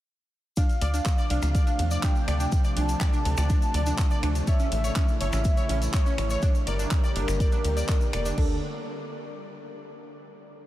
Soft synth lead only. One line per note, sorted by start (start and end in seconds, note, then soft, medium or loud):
0.57 1.21 F5 loud
1.31 1.94 F5 loud
2.03 2.78 G5 loud
2.77 4.38 A5 loud
4.48 5.11 E5 loud
5.21 5.84 E5 loud
5.94 6.57 C#5 loud
6.67 8.28 A#4 loud
8.38 8.56 A4 loud